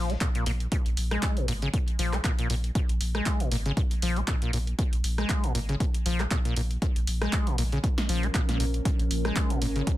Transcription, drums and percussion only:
0.10 closed hi-hat
0.21 kick, clap, closed hi-hat
0.35 closed hi-hat
0.46 open hi-hat
0.60 closed hi-hat
0.72 kick, closed hi-hat
0.86 closed hi-hat
0.97 open hi-hat
1.11 cross-stick, closed hi-hat
1.23 kick, clap, closed hi-hat
1.37 closed hi-hat
1.48 open hi-hat
1.62 closed hi-hat
1.74 kick, closed hi-hat
1.88 closed hi-hat
1.99 open hi-hat
2.13 cross-stick, clap, closed hi-hat
2.24 kick, clap, closed hi-hat
2.39 closed hi-hat
2.50 open hi-hat
2.64 closed hi-hat
2.75 kick, closed hi-hat
2.89 closed hi-hat
3.01 open hi-hat
3.15 cross-stick, closed hi-hat
3.26 kick, clap, closed hi-hat
3.40 closed hi-hat
3.52 open hi-hat
3.66 closed hi-hat
3.77 kick, closed hi-hat
3.91 closed hi-hat
4.02 open hi-hat
4.17 closed hi-hat
4.28 kick, clap, closed hi-hat
4.42 closed hi-hat
4.53 open hi-hat
4.67 closed hi-hat
4.79 kick, closed hi-hat
4.93 closed hi-hat
5.04 open hi-hat
5.18 cross-stick, closed hi-hat
5.29 kick, clap, closed hi-hat
5.44 closed hi-hat
5.55 open hi-hat
5.69 closed hi-hat
5.80 kick, closed hi-hat
5.94 closed hi-hat
6.06 open hi-hat
6.20 cross-stick, clap, closed hi-hat
6.31 kick, clap, closed hi-hat
6.45 closed hi-hat
6.56 open hi-hat
6.71 closed hi-hat
6.82 kick, closed hi-hat
6.96 closed hi-hat
7.07 open hi-hat
7.22 cross-stick, closed hi-hat
7.33 kick, clap, closed hi-hat
7.47 closed hi-hat
7.58 open hi-hat
7.72 closed hi-hat
7.84 kick, closed hi-hat
7.98 snare, closed hi-hat
8.09 open hi-hat
8.23 closed hi-hat
8.34 kick, clap, closed hi-hat
8.49 snare, closed hi-hat
8.60 open hi-hat
8.74 closed hi-hat
8.85 kick, closed hi-hat
8.99 closed hi-hat
9.11 open hi-hat
9.25 cross-stick, closed hi-hat
9.36 kick, clap, closed hi-hat
9.50 closed hi-hat
9.62 open hi-hat
9.76 closed hi-hat
9.87 kick, closed hi-hat

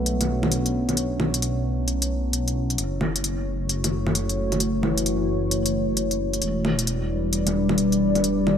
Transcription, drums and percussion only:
0.06 closed hi-hat
0.21 closed hi-hat, low bongo
0.43 low bongo
0.52 closed hi-hat
0.66 closed hi-hat
0.89 closed hi-hat, low bongo
0.97 closed hi-hat
1.20 low bongo
1.34 closed hi-hat
1.42 closed hi-hat
1.88 closed hi-hat
2.02 closed hi-hat
2.33 closed hi-hat
2.48 closed hi-hat
2.70 closed hi-hat
2.78 closed hi-hat
3.01 low bongo
3.16 closed hi-hat
3.24 closed hi-hat
3.69 closed hi-hat
3.84 closed hi-hat, low bongo
4.07 low bongo
4.15 closed hi-hat
4.29 closed hi-hat
4.52 closed hi-hat, low bongo
4.60 closed hi-hat
4.83 low bongo
4.98 closed hi-hat
5.06 closed hi-hat
5.51 closed hi-hat
5.66 closed hi-hat
5.97 closed hi-hat
6.11 closed hi-hat
6.33 closed hi-hat
6.42 closed hi-hat
6.65 low bongo
6.79 closed hi-hat
6.87 closed hi-hat
7.33 closed hi-hat
7.47 closed hi-hat, low bongo
7.69 low bongo
7.78 closed hi-hat
7.92 closed hi-hat
8.15 closed hi-hat, low bongo
8.24 closed hi-hat
8.47 low bongo

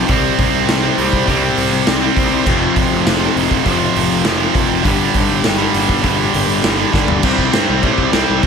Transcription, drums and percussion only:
0.08 kick, open hi-hat
0.38 kick, open hi-hat
0.69 snare, open hi-hat
0.98 open hi-hat
1.13 kick
1.28 kick, open hi-hat
1.57 open hi-hat
1.87 snare, open hi-hat
2.17 kick, open hi-hat
2.46 kick, crash
2.76 kick, open hi-hat
3.07 snare, open hi-hat
3.37 open hi-hat
3.51 kick
3.66 kick, open hi-hat
3.96 open hi-hat
4.25 snare, open hi-hat
4.55 kick, open hi-hat
4.85 kick, open hi-hat
5.14 kick, open hi-hat
5.44 snare, open hi-hat
5.74 open hi-hat
5.89 kick
6.03 kick, open hi-hat
6.34 open hi-hat
6.64 snare, open hi-hat
6.93 kick, snare
7.08 floor tom
7.23 kick, crash
7.38 kick
7.53 snare, crash
7.83 kick, crash
7.98 kick
8.13 snare, crash
8.43 kick, crash

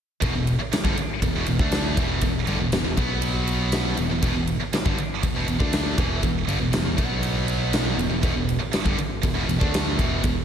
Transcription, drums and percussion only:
0.22 kick, ride
0.47 ride
0.73 snare, ride
0.85 kick
0.97 ride
1.22 kick, ride
1.46 ride
1.59 kick
1.72 snare, ride
1.97 kick, ride
2.21 kick, ride
2.47 ride
2.72 snare, ride
2.97 kick, ride
3.22 ride
3.47 ride
3.72 snare, ride
3.97 ride
4.22 kick, ride
4.47 ride
4.73 snare, ride
4.86 kick
4.98 ride
5.23 kick, ride
5.48 ride
5.60 kick
5.73 snare, ride
5.98 kick, ride
6.23 kick, ride
6.48 ride
6.73 snare, ride
6.98 kick, ride
7.23 ride
7.48 ride
7.73 snare, ride
7.99 ride
8.23 kick, ride
8.49 ride
8.73 snare, ride
8.86 kick
8.98 ride
9.23 kick, ride
9.49 ride
9.61 kick
9.74 snare, ride
9.99 kick, ride
10.24 kick, ride

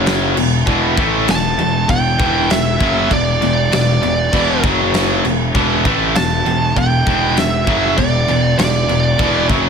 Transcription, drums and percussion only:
0.06 snare, crash
0.37 crash
0.67 kick, crash
0.97 kick, crash
1.28 snare, crash
1.59 crash
1.89 kick, crash
2.20 kick, crash
2.50 snare, crash
2.81 kick, crash
3.11 kick, crash
3.42 crash
3.72 snare, crash
4.03 crash
4.33 kick, crash
4.64 kick, crash
4.94 snare, crash
5.25 crash
5.55 kick, crash
5.85 kick, crash
6.15 snare, crash
6.46 crash
6.76 kick, crash
7.07 kick, crash
7.37 snare, crash
7.67 kick, crash
7.98 kick, crash
8.28 crash
8.59 snare, crash
8.89 crash
9.19 kick, crash
9.49 kick, crash

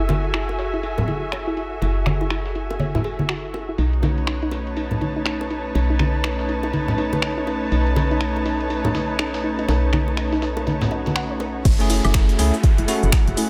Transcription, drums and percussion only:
0.09 snare, ride, high bongo, high conga
0.24 ride
0.34 finger snap, ride
0.49 ride, high bongo
0.59 snare, ride
0.73 ride
0.83 ride
0.98 high bongo, low conga
1.08 ride, high conga
1.32 finger snap, ride, high bongo
1.57 ride
1.82 ride, high bongo
2.06 finger snap, ride, high conga
2.21 high bongo
2.30 finger snap, ride
2.46 snare
2.55 ride
2.70 ride, high bongo
2.79 ride, high conga
2.95 snare, low conga
3.04 ride, high bongo
3.19 high conga
3.29 finger snap, open hi-hat
3.54 ride, high bongo
3.78 ride
3.93 ride
4.03 snare, ride, high bongo, high conga
4.18 ride
4.27 finger snap, ride
4.42 ride
4.51 snare, ride, high bongo
4.67 ride
4.77 ride
4.91 high bongo, low conga
5.01 ride, high conga
5.26 finger snap, ride
5.41 high bongo
5.50 ride
5.75 ride, high bongo
5.99 finger snap, ride, high conga
6.24 finger snap, ride, high bongo
6.39 snare
6.49 ride
6.63 ride, high bongo
6.73 ride, high conga
6.88 snare, low conga
6.98 ride
7.13 high bongo, high conga
7.22 finger snap, open hi-hat
7.47 ride, high bongo
7.72 ride
7.87 ride
7.96 snare, ride, high bongo, high conga
8.11 ride
8.21 finger snap, ride
8.36 ride, high bongo
8.46 snare, ride
8.60 ride
8.70 ride
8.84 high bongo, low conga
8.94 snare, open hi-hat, high conga
9.19 finger snap, ride, high bongo
9.34 snare, open hi-hat
9.59 ride
9.68 snare, open hi-hat, high bongo
9.93 finger snap, ride, high conga
10.08 high bongo
10.17 finger snap, ride
10.32 snare
10.42 snare, ride
10.57 ride, high bongo
10.67 snare, ride, high conga
10.81 snare, ride, low conga
10.91 ride, high bongo
11.06 snare, ride, high conga
11.16 finger snap, open hi-hat
11.40 ride, high bongo
11.65 kick, closed hi-hat, crash, ride, shaker
11.80 closed hi-hat, ride
11.90 snare, open hi-hat, ride, shaker
12.05 ride, high woodblock, shaker
12.14 finger snap, kick, snare, closed hi-hat, ride
12.29 closed hi-hat, ride
12.39 snare, open hi-hat, ride, shaker
12.54 ride, shaker
12.63 kick, closed hi-hat, ride, shaker
12.78 closed hi-hat
12.88 open hi-hat, ride, shaker
13.03 shaker
13.12 finger snap, kick, snare, closed hi-hat, ride, shaker
13.28 closed hi-hat
13.37 open hi-hat, ride, shaker

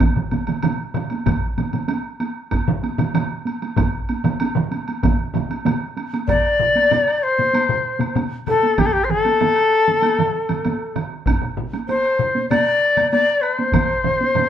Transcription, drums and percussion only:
0.00 taiko, taiko low-mid, taiko mid, taiko high, high woodblock
0.16 taiko low-mid, taiko mid
0.31 taiko low-mid, taiko mid, taiko high, high woodblock
0.47 taiko low-mid, taiko mid, taiko high, high woodblock
0.63 taiko low-mid, taiko mid, taiko high, high woodblock
0.94 taiko low-mid, taiko mid, high woodblock
1.10 taiko high, high woodblock
1.26 taiko, taiko low-mid, taiko mid, taiko high, high woodblock
1.58 taiko low-mid, taiko mid, taiko high, high woodblock
1.73 taiko low-mid, taiko mid, taiko high, high woodblock
1.88 taiko high, high woodblock
2.20 taiko high, high woodblock
2.51 taiko, taiko high, high woodblock
2.68 taiko low-mid, taiko mid
2.83 taiko high, high woodblock
2.98 taiko low-mid, taiko mid, taiko high, high woodblock
3.14 taiko low-mid, taiko mid, taiko high, high woodblock
3.46 taiko high, high woodblock
3.62 taiko high, high woodblock
3.77 taiko, taiko low-mid, taiko mid, taiko high, high woodblock
4.09 taiko high, high woodblock
4.24 taiko low-mid, taiko mid, taiko high, high woodblock
4.40 taiko high, high woodblock
4.56 taiko low-mid, taiko mid
4.72 taiko high, high woodblock
4.88 taiko high, high woodblock
5.03 taiko, taiko low-mid, taiko mid, taiko high, high woodblock
5.34 taiko low-mid, taiko mid, taiko high, high woodblock
5.51 taiko high, high woodblock
5.65 taiko low-mid, taiko mid, taiko high, high woodblock
5.97 taiko high, high woodblock
6.13 taiko high, high woodblock
6.28 taiko, taiko low-mid, taiko high, high woodblock
6.59 taiko low-mid
6.75 taiko high, high woodblock
6.91 taiko low-mid, taiko high, high woodblock
7.08 high woodblock
7.38 taiko low-mid, taiko high
7.54 taiko high, high woodblock
7.69 taiko low-mid
8.00 taiko low-mid, taiko high, high woodblock
8.16 taiko low-mid, taiko high, high woodblock
8.47 taiko low-mid, high woodblock
8.63 taiko high
8.78 taiko, taiko mid, taiko high, high woodblock
9.10 taiko mid
9.25 taiko high, high woodblock
9.40 taiko mid, taiko high, high woodblock
9.56 high woodblock
9.87 taiko mid, taiko high
10.03 taiko high, high woodblock
10.19 taiko mid
10.49 taiko mid, taiko high, high woodblock
10.65 taiko mid, taiko high, high woodblock
10.96 taiko mid, high woodblock
11.26 taiko, taiko low-mid, taiko high, high woodblock
11.41 taiko low-mid
11.57 taiko low-mid
11.73 taiko high, high woodblock
11.89 taiko high, high woodblock
12.05 high woodblock
12.19 taiko low-mid
12.35 taiko high
12.50 taiko low-mid, taiko high, high woodblock
12.97 taiko low-mid, taiko high, high woodblock
13.13 taiko high, high woodblock
13.43 high woodblock
13.59 taiko high
13.73 taiko, taiko low-mid, taiko mid, taiko high, high woodblock
14.05 taiko low-mid, taiko mid
14.21 taiko high
14.35 taiko low-mid, taiko mid, taiko high, high woodblock

